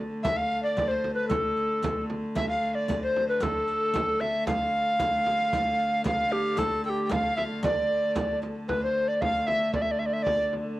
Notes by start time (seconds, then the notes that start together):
Already playing: D3 A3
0.23 D3 A3 E5, riq, frame drum
0.37 F5
0.51 riq
0.63 D5
0.77 riq, frame drum
0.88 C5
1.04 frame drum
1.14 B4
1.28 A4, riq, frame drum
1.56 riq
1.82 riq, frame drum
2.10 frame drum
2.35 E5, riq, frame drum
2.49 F5
2.62 riq
2.75 D5
2.88 riq, frame drum
3.03 C5
3.16 frame drum
3.29 B4
3.40 A4, riq, frame drum
3.68 riq
3.94 riq, frame drum
4.20 E5, frame drum
4.47 D3 A3 F5, riq, frame drum
4.99 riq, frame drum
5.26 frame drum
5.53 riq, frame drum
5.79 riq
6.04 F5, riq, frame drum
6.32 G4, frame drum
6.57 A4 A5, riq, frame drum
6.84 A4 G5, riq
6.90 G4
7.05 G5
7.09 F5, riq, frame drum
7.37 E5, frame drum
7.63 D5, riq, frame drum
8.16 riq, frame drum
8.42 riq, frame drum
8.68 D3 A3 B4, frame drum
8.82 C5
9.08 D5
9.21 F5, frame drum
9.47 E5, frame drum
9.74 D5, frame drum
9.82 E5
9.91 D5
9.99 E5
10.06 D5
10.13 E5
10.23 D5, frame drum
10.53 frame drum